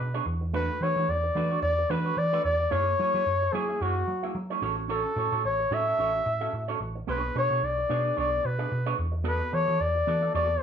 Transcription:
Already playing: B4
0.00 B2, muted clean electric guitar stroke
0.14 B3 D4 G#4 C#5
0.26 E2, muted clean electric guitar stroke
0.41 muted clean electric guitar stroke
0.53 A3 D4 F#4 B4
0.70 muted clean electric guitar stroke
0.81 E3 A3 D4 F#4 B4 C#5
0.96 E3 A3 D4 F#4 B4
1.08 E2 D5, muted clean electric guitar stroke
1.24 muted clean electric guitar stroke
1.35 E3 A3 D4 F#4 B4
1.51 A3 D4 F#4 C#5
1.62 E2 D5, muted clean electric guitar stroke
1.79 muted clean electric guitar stroke
1.90 E3 A3 D4 F#4 B4
2.06 A3 D4 F#4 C#5
2.17 E3 D5, muted clean electric guitar stroke
2.33 A3 D4 F#4 B4
2.45 E2 D5, muted clean electric guitar stroke
2.60 muted clean electric guitar stroke
2.71 F#2 A#3 E4 G#4 C#5
2.86 muted clean electric guitar stroke
2.99 F#3 A#3 E4 G#4 C#5
3.14 F#3 A#3 E4 G#4 C#5
3.25 F#2, muted clean electric guitar stroke
3.42 muted clean electric guitar stroke
3.53 F#3 A#3 E4 G#4 C#5
3.69 A#3 E4 G#4 E5
3.81 F#2 A#3 E4 F#4 G#4 C#5
3.96 muted clean electric guitar stroke
4.07 F#3, muted clean electric guitar stroke
4.23 A#3 E4 G#4 E5
4.35 F#3, muted clean electric guitar stroke
4.50 A#3 E4 G#4 C#5
4.62 A1 C#4 F#4 A4 C#5
4.77 muted clean electric guitar stroke
4.88 C#4 F#4 A4 C#5
5.05 muted clean electric guitar stroke
5.16 A2 C#4 F#4 A4 C#5
5.32 A2 C#4 F#4 A4 C#5
5.44 A1 C#5, muted clean electric guitar stroke
5.59 muted clean electric guitar stroke
5.71 A2 C#4 F#4 A4 C#5 E5
5.87 C#4 F#4 A4 E5
5.98 A1 C#4 F#4 A4 C#5
6.14 muted clean electric guitar stroke
6.26 A2, muted clean electric guitar stroke
6.41 C#4 F#4 A4 E5
6.53 A2, muted clean electric guitar stroke
6.68 C#4 F#4 A4 C#5
6.80 A1, muted clean electric guitar stroke
6.95 muted clean electric guitar stroke
7.07 B1 B3 D4 G#4 B4 C#5
7.23 muted clean electric guitar stroke
7.35 B2 B3 D4 G#4 C#5
7.50 B2 B3 D4 G#4 C#5
7.62 B1 D5, muted clean electric guitar stroke
7.78 muted clean electric guitar stroke
7.89 B2 B3 D4 G#4 C#5
8.04 B3 D4 G#4 D5
8.16 B1 B3 D4 G#4 C#5 D5
8.31 muted clean electric guitar stroke
8.43 B2 B4, muted clean electric guitar stroke
8.59 B3 D4 G#4 D5
8.70 B2, muted clean electric guitar stroke
8.86 B3 D4 G#4 C#5
8.97 E2, muted clean electric guitar stroke
9.12 muted clean electric guitar stroke
9.24 B3 F#4 A4 B4 D5
9.40 muted clean electric guitar stroke
9.52 E3 B3 F#4 A4 C#5 D5
9.67 E3 B3 F#4 A4 D5
9.78 E2 D5, muted clean electric guitar stroke
9.95 muted clean electric guitar stroke
10.07 E3 B3 F#4 A4 D5
10.22 B3 F#4 A4 E5
10.34 E2 B3 F#4 A4 D5
10.49 muted clean electric guitar stroke

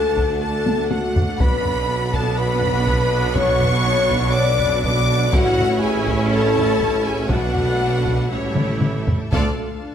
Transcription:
Already playing: D2 A3 D4 F#4 A4 F#5 A5
0.17 taiko
0.40 A4 A5
0.66 taiko high
0.90 F#4 F#5, taiko high
1.16 taiko low
1.39 B1 B2 B3 D4 F#4 B4 F#5 B5, taiko
1.65 taiko low
2.14 A4 A5, taiko
2.36 B4 B5
2.62 taiko low
2.87 taiko
3.34 C#5 C#6, taiko
3.61 taiko low
4.10 taiko
4.33 D5 D6
4.59 taiko low
4.82 D5 D6, taiko
5.33 A1 A2 C#4 E4 F#4 C#5 E5 F#5, taiko
5.58 taiko low
5.82 G#4 G#5
6.07 taiko
6.31 A4 A5
6.57 taiko low
6.80 taiko
7.05 G#4 G#5
7.30 B1 B2 A3 D4 F#4 B4 F#5, taiko
7.55 taiko low
8.05 taiko
8.30 A1 A2 G3 C#4 E4 G4 A4 C#5
8.56 taiko mid
8.82 taiko mid
9.07 taiko low
9.32 D2 A3 D4 F4 A4 D5 F5 A5, taiko
9.58 D2 A4
9.83 D4

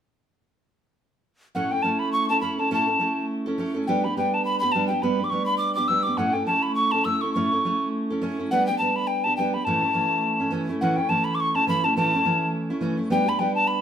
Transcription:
1.55 A2 A3 C#4 E4 A4 F#5
1.71 C#4 E4 A4 G5
1.82 A3 C#4 E4 A4 A5
1.99 B5
2.12 C#6
2.29 C#4 E4 A4 A5
2.41 A3 C#4 E4 A4 B5
2.58 C#4 E4 A4 A5
2.71 A2 A3 C#4 E4 A4 A5
2.88 C#4 E4 A4
2.99 A3 C#4 E4 A4
3.46 C#4 E4 A4
3.58 A3 C#4 E4 A4
3.74 C#4 E4 A4
3.87 G3 B3 D4 G4 G5
4.04 B3 D4 G4 B5
4.17 G3 B3 D4 G4 G5
4.34 A5
4.45 B5
4.60 D4 G4 B5
4.64 B3
4.72 G3 B3 D4 A5
4.76 G4
4.87 D4 G4 G5
4.92 B3
5.02 G3 B3 D4 G4 B5
5.19 B3 D4 G4
5.24 D6
5.30 G3 B3 D4 G4 C#6
5.46 B5
5.58 D6
5.75 D4 G4 D6
5.79 B3
5.88 G3 B3 D4 G4 E6
6.03 D4 G4 D6
6.08 B3
6.17 A2 A3 C#4 E4 A4 F#5
6.33 C#4 E4 A4 G5
6.46 A3 C#4 E4 A4 A5
6.62 B5
6.75 C#6
6.91 C#4 E4 A4 A5
7.05 A3 C#4 E4 A4 E6
7.21 C#4 E4 A4 C#6
7.33 A2 A3 C#4 E4 A4 C#6
7.52 C#4 E4 A4
7.65 A3 C#4 E4 A4
8.10 C#4 E4 A4
8.21 A3 C#4 E4 A4
8.38 C#4 E4 A4
8.51 G3 B3 D4 G4 F#5
8.67 B3 D4 G4 G5
8.78 G3 B3 D4 G4 A5
8.96 B5
9.07 G5
9.24 B3 D4 G4 A5
9.37 G3 B3 D4 G4 G5
9.54 B3 D4 G4 B5
9.65 A2 E3 A3 C#4 E4 A5
9.82 A3 C#4 E4
9.93 E3 A3 C#4 E4
10.39 A3 C#4 E4
10.51 E3 A3 C#4 E4
10.69 A3 C#4 E4
10.81 A2 E3 A3 C#4 E4 F#5
10.96 A3 C#4 E4 G5
11.09 E3 A3 C#4 E4 A5
11.24 B5
11.35 D6
11.40 C#6
11.54 A3 C#4 E4 A5
11.67 E3 A3 C#4 E4 B5
11.83 A3 C#4 E4 A5
11.97 A2 E3 A3 C#4 E4 A5
12.14 A3 C#4 E4
12.25 E3 A3 C#4 E4
12.70 A3 C#4 E4
12.81 E3 A3 C#4 E4
12.97 A3 C#4 E4
13.10 G3 B3 D4 G4 G5
13.26 B3 D4 G4 B5
13.39 G3 B3 D4 G4 G5
13.55 A5
13.67 B5

